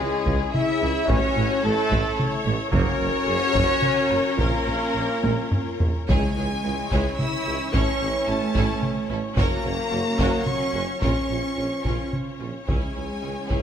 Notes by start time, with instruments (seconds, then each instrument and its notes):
Already playing: timpani C#3, french horn section G#3, string section C#4 E4 C#5, violin section G#4, flute section G#4, trumpet section G#4
0.00 tuba C#2, viola section E4
0.26 tuba C#2, double bass section C#2, cello section C#3, viola section G#4, taiko
0.54 french horn section E4, violin section E5, trumpet section E5, flute section E5, taiko mid
0.81 tuba C#2, double bass section C#2, cello section C#3
1.07 tuba A1, double bass section A1, cello section A2, trombone section E3 C#4, french horn section C#4, viola section F#4, string section A4 C#5, violin section C#5, trumpet section C#5, flute section C#5, taiko
1.36 double bass section A1, tuba A1, cello section A2
1.63 tuba A1, double bass section A1, cello section A2, french horn section A3, viola section E4, violin section A4, flute section A4, trumpet section A4
1.91 double bass section A1, tuba A1, cello section A2, taiko
2.17 viola section C#5, taiko mid
2.46 double bass section A1, tuba A1, cello section A2
2.70 double bass section F#1, tuba F#1, cello section F#2, trombone section F#3 A#3, string section C#4 F#4 A#4, french horn section C#4, viola section A#4, flute section C#5, trumpet section C#5, violin section C#5, taiko
2.99 double bass section F#1, tuba F#1, cello section F#2
3.25 double bass section F#1, tuba F#1, cello section F#2, viola section G#4
3.53 double bass section F#1, tuba F#1, cello section F#2, viola section F#4, taiko
3.82 taiko mid
4.10 double bass section F#1, tuba F#1, cello section F#2, taiko rim
4.37 tuba A#1, double bass section A#1, cello section A#2, trombone section F3 C#4, french horn section A#3, viola section F4, string section F4, flute section A#4, trumpet section A#4, violin section A#4, taiko
4.67 double bass section A#1, tuba A#1, cello section A#2
4.94 double bass section A#1, tuba A#1, cello section A#2
5.24 double bass section A#1, tuba A#1, cello section A#2, taiko high
5.52 taiko low-mid
5.79 tuba A#1, double bass section A#1, cello section A#2, taiko low
6.08 double bass section C#2, tuba C#2, timpani C#3, trombone section E3 C#4, cello section G#3, viola section G#3 E4, french horn section G#3, string section C#4 E4 C#5, violin section G#4 C#5 G#5, trumpet section C#5, taiko
6.36 double bass section C#2, tuba C#2, viola section G#3 E4, violin section G#4 C#5
6.64 tuba C#2, double bass section C#2, viola section G#3 E4, violin section E4 G#4
6.91 tuba C#2, double bass section C#2, viola section G#3 E4, violin section G#4 C#5, taiko
7.18 cello section E4, french horn section E4, violin section E6, taiko mid
7.46 tuba C#2, double bass section C#2, viola section G#3 E4, violin section E4 G#4
7.73 tuba A1, double bass section A1, cello section C#4, viola section C#4 E4, french horn section C#4, violin section A4 C#5 C#6, taiko
8.01 tuba A1, double bass section A1, viola section C#4 E4, violin section A4 C#5
8.27 tuba A1, double bass section A1, french horn section A3, cello section A3, viola section C#4 E4, violin section E4 A4 A5
8.55 tuba A1, double bass section A1, viola section C#4 E4, violin section A4 C#5, taiko
8.83 taiko mid
9.09 double bass section A1, tuba A1, viola section C#4 E4, violin section E4 A4
9.36 tuba F#1, double bass section F#1, trombone section F#3 C#4, french horn section A#3, cello section A#3, viola section C#4 F#4, string section F#4, violin section A#4 C#5 A#5, trumpet section C#5, taiko
9.63 tuba F#1, double bass section F#1, viola section C#4 F#4, violin section A#4 C#5
9.91 double bass section F#1, tuba F#1, viola section C#4 F#4, violin section F#4 A#4
10.19 tuba F#1, double bass section F#1, viola section C#4 F#4, violin section A#4 C#5, taiko
10.46 french horn section C#4, cello section C#4, violin section C#6, taiko mid
10.73 tuba F#1, double bass section F#1, viola section C#4 F#4, violin section F#4 A#4
11.00 double bass section A#1, tuba A#1, trombone section F3, cello section C#4, french horn section C#4, string section C#4 F4 C#5, viola section C#4 F4, violin section A#4 C#5 C#6, taiko
11.29 double bass section A#1, tuba A#1, viola section C#4 F4, violin section A#4 C#5
11.56 double bass section A#1, tuba A#1, viola section C#4 F4, violin section F4 A#4
11.83 tuba A#1, double bass section A#1, viola section C#4 F4, violin section A#4 C#5, taiko
12.13 taiko mid
12.39 double bass section A#1, tuba A#1, viola section C#4 F4, violin section F4 A#4
12.66 double bass section C#2, tuba C#2, timpani C#3, trombone section E3 C#4, cello section G#3, french horn section G#3, viola section C#4 E4, string section E4, violin section G#4 C#5 G#5, trumpet section C#5, taiko
12.94 tuba C#2, double bass section C#2, viola section C#4 E4, violin section G#4 C#5
13.21 double bass section C#2, tuba C#2, viola section C#4 E4, violin section E4 G#4
13.47 tuba C#2, double bass section C#2, viola section C#4 E4, violin section G#4 C#5, taiko